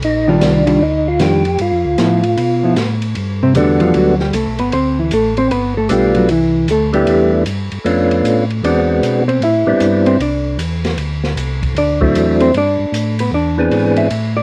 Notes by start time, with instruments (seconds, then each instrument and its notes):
0.02 tonewheel organ A#1 D#4, ride
0.27 hollow-body jazz guitar D#3 G3 D4 F4, tonewheel organ D4
0.41 tonewheel organ C2, snare, hi-hat pedal, ride
0.66 hollow-body jazz guitar D#3 G3 D4 F4, ride
0.81 tonewheel organ D2 D#4
1.08 tonewheel organ F4
1.19 tonewheel organ F2 G4, hollow-body jazz guitar D#3 G3 D4 F4, snare, hi-hat pedal, ride
1.45 ride
1.59 tonewheel organ G2 F4, ride
1.72 tonewheel organ F2
1.85 tonewheel organ D2
1.98 tonewheel organ A2, hollow-body jazz guitar F3 B3 E4, snare, hi-hat pedal, ride
2.23 ride
2.37 tonewheel organ B2, ride
2.63 hollow-body jazz guitar F3 B3 E4
2.76 tonewheel organ A2, snare, hi-hat pedal, ride
3.02 ride
3.15 tonewheel organ G2, ride
3.43 hollow-body jazz guitar C3 C4
3.54 tonewheel organ E2 G3 A3 B3 D4 F#4, hollow-body jazz guitar D3 D4, hi-hat pedal, ride
3.80 hollow-body jazz guitar F3 F4, ride
3.94 tonewheel organ D2, hollow-body jazz guitar F#3 F#4, ride
4.19 hollow-body jazz guitar G3 G4, snare
4.33 tonewheel organ C2, hollow-body jazz guitar A3 A4, hi-hat pedal, ride
4.47 tonewheel organ B1
4.59 tonewheel organ G1, hollow-body jazz guitar B3 B4, ride
4.72 tonewheel organ D2, hollow-body jazz guitar C4 C5, ride
4.99 hollow-body jazz guitar E3 E4
5.11 tonewheel organ A1, hollow-body jazz guitar A3 A4, hi-hat pedal, ride
5.37 hollow-body jazz guitar C4 C5, ride
5.51 tonewheel organ G1, hollow-body jazz guitar B3 B4, ride
5.78 hollow-body jazz guitar A3 A4
5.89 tonewheel organ B1 G3 A3 B3 D4 F4, hollow-body jazz guitar G3 G4, hi-hat pedal, ride
6.15 hollow-body jazz guitar F#3 F#4, ride
6.28 tonewheel organ C2, hollow-body jazz guitar E3 E4, ride
6.68 tonewheel organ D2, hollow-body jazz guitar A3 A4, hi-hat pedal, ride
6.93 tonewheel organ G3 A3 B3 D4 E4, hollow-body jazz guitar G3 G4, ride
7.07 tonewheel organ E2, ride
7.46 tonewheel organ G2, hi-hat pedal, ride
7.71 tonewheel organ G2, ride
7.84 tonewheel organ F2 A3 B3 C#4 D4 F4, ride
8.11 ride
8.24 tonewheel organ A2, hi-hat pedal, ride
8.50 ride
8.63 tonewheel organ E2 G#3 B3 C4 D4 F#4, hollow-body jazz guitar D4 D5, ride
9.02 tonewheel organ B2, hi-hat pedal, ride
9.28 hollow-body jazz guitar C4 C5, ride
9.41 tonewheel organ A2, hollow-body jazz guitar E4 E5, ride
9.66 tonewheel organ A2 G3 B3 C4 D4 E4
9.80 tonewheel organ G2, hi-hat pedal, ride
10.06 hollow-body jazz guitar C4 C5, ride
10.19 tonewheel organ C2, hollow-body jazz guitar D4 D5, ride
10.58 tonewheel organ E2, hi-hat pedal, ride
10.85 snare, ride
10.97 tonewheel organ D2, ride
11.24 snare
11.36 tonewheel organ C2, hi-hat pedal, ride
11.62 kick, ride
11.75 tonewheel organ D2, hollow-body jazz guitar D4 D5, ride
12.01 tonewheel organ F#3 A3 C4 D4 E4, kick
12.14 tonewheel organ E2, hi-hat pedal, ride
12.40 hollow-body jazz guitar C4 C5, ride
12.54 tonewheel organ G2, hollow-body jazz guitar D4 D5, ride
12.79 tonewheel organ G2
12.92 tonewheel organ A2, hi-hat pedal, ride
13.19 hollow-body jazz guitar B3 B4, ride
13.32 tonewheel organ E2, hollow-body jazz guitar D4 D5
13.58 tonewheel organ E3 B3 C4 D4 G#4
13.71 tonewheel organ G#2, hi-hat pedal, ride
13.96 hollow-body jazz guitar E5, ride
14.10 tonewheel organ A2, ride
14.37 hollow-body jazz guitar D5